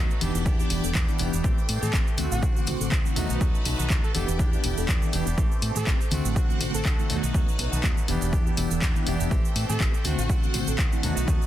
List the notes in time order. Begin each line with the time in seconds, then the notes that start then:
Already playing: F#3 A3 D#4 B4 A5
0.00 D#4 F#4
0.11 shaker
0.20 E1 E3 B3 D4 E4 G4 D5 G5, open hi-hat, tambourine, high conga
0.35 E1, tambourine, shaker
0.45 E2 E3 B3 D4 G4, kick, tambourine, shaker
0.58 E3 B3 D4 G4, shaker
0.70 E1, open hi-hat, tambourine, low conga
0.84 E1 E3 B3 D4 A4, tambourine, shaker
0.94 E2 E3 B3 D4, kick, clap, shaker
1.08 E3 B3 D4 E4, high conga, shaker
1.18 E1 E3 B3 D4 G4, open hi-hat, tambourine, low conga
1.32 E1 B3 D4 G4, tambourine, shaker
1.43 A1 E3 A3 C4 G4 A4 G5, kick, tambourine, shaker
1.58 shaker
1.69 A2, open hi-hat, tambourine
1.81 A2 A3 C4 G4 A4, tambourine, high conga, shaker
1.93 A1 E3 A3 C4 G4, kick, clap, shaker
2.07 shaker
2.17 D2 D3 A3 C4 D4 F#4 C5 F#5, open hi-hat, tambourine, high conga
2.31 A1 F#4, tambourine, shaker
2.42 D2 A3 C4 F#4, kick, tambourine, shaker
2.55 D3 A3 C4 F#4, shaker
2.67 A1, open hi-hat, tambourine, high conga, low conga
2.80 A1 D3 A3 C4 A4, tambourine, shaker
2.91 D2 A3 C4 F#4, kick, clap, shaker
3.04 D3 A3 C4 E4 F#4, shaker
3.15 D#2 D#3 F#3 A3 B3 D#4 F#4 B4 A5, open hi-hat, tambourine, high conga, low conga
3.29 B1 A3 D#4 F#4, tambourine, shaker
3.40 F#3 A3 B3 D#4 F#4, kick, tambourine, shaker
3.55 shaker
3.65 B1, open hi-hat, tambourine, low conga
3.78 B1 A3 D#4 F#4, tambourine, high conga, shaker
3.89 D#2 D#3 F#3 A3 B3 F#4, kick, clap, shaker
4.03 A3 D#4 F#4 A4, shaker
4.14 E1 E3 B3 D4 E4 G4 A4 D5 G5, open hi-hat, tambourine, high conga
4.28 E1, tambourine, shaker
4.38 E2 E3 B3 D4 G4, kick, tambourine, shaker
4.52 E3 B3 D4 G4, shaker
4.63 E1, open hi-hat, tambourine, low conga
4.77 E1 E3 B3 D4 A4, tambourine, shaker
4.88 E2 E3 B3 D4 G4, kick, clap, shaker
5.02 high conga, shaker
5.12 E1 E3 B3 D4 G4, open hi-hat, tambourine, low conga
5.26 E1 B3 D4 G4, tambourine, shaker
5.37 A1 E3 A3 C4 G4 A4, kick, shaker
5.52 shaker
5.62 A2, open hi-hat, tambourine
5.75 A2 A3 C4 G4 A4, tambourine, high conga, shaker
5.86 A1 E3 A3 C4 G4, kick, clap, shaker
5.99 A3 C4 G4, shaker
6.10 D2 D3 A3 C4 D4 F#4 C5 F#5, open hi-hat, tambourine, high conga
6.25 A1, tambourine, shaker
6.35 D2 A3 C4 F#4, kick, tambourine, shaker
6.49 D3 A3 C4 F#4, shaker
6.60 A1, open hi-hat, tambourine, high conga, low conga
6.74 A1 D3 A3 C4 A4, tambourine, shaker
6.85 D2 A3 C4 F#4, kick, clap, tambourine, shaker
6.98 D3 A3 C4 E4, shaker
7.09 D#2 D#3 F#3 A3 B3 D#4 F#4 B4 A5, open hi-hat, tambourine, high conga, low conga
7.23 B1 A3 D#4 F#4, tambourine, shaker
7.34 D#2 D#3 F#3 A3 B3 D#4 F#4, kick, tambourine, shaker
7.49 shaker
7.59 B1, open hi-hat, tambourine, low conga
7.72 B1 A3 D#4 F#4, tambourine, high conga, shaker
7.83 D#2 D#3 F#3 A3 B3 D#4 F#4, kick, clap, tambourine, shaker
7.97 shaker
8.07 E1 E3 B3 D4 E4 G4 D5 G5, open hi-hat, tambourine, high conga
8.21 E1, tambourine, shaker
8.32 E2 E3 B3 D4 G4, kick, tambourine, shaker
8.45 E3 B3 D4 G4, shaker
8.57 E1, open hi-hat, tambourine, low conga
8.71 E1 E3 B3 D4 A4, tambourine, shaker
8.81 E2 E3 B3 D4 G4, kick, clap, shaker
8.95 E3 B3 D4 E4, high conga, shaker
9.05 E1 E3 B3 D4 G4, open hi-hat, tambourine, low conga
9.19 E1 B3 D4 G4, tambourine, shaker
9.30 A1 E3 A3 C4 G4 A4, kick, tambourine, shaker
9.45 shaker
9.56 A2, open hi-hat, tambourine
9.68 A2 A3 C4 G4 A4, tambourine, high conga, shaker
9.80 A1 E3 A3 C4 G4, kick, clap, shaker
9.93 A3 C4 G4, shaker
10.04 D2 D3 A3 C4 D4 F#4 C5 F#5, open hi-hat, tambourine, high conga
10.18 A1 F#4, tambourine, shaker
10.29 D2 A3 C4 F#4, kick, tambourine, shaker
10.42 D3 A3 C4 F#4, shaker
10.54 A1, open hi-hat, tambourine, high conga, low conga
10.67 A1 D3 A3 C4 A4, tambourine, shaker
10.78 D2 A3 C4 F#4, kick, clap, shaker
10.92 D3 A3 C4 E4, shaker
11.02 D#2 D#3 F#3 A3 B3 D#4 F#4 B4 A5, open hi-hat, tambourine, high conga, low conga
11.16 B1 A3 D#4 F#4, tambourine, shaker
11.27 D#2 D#3 F#3 A3 B3 D#4 F#4, kick, tambourine, shaker
11.42 shaker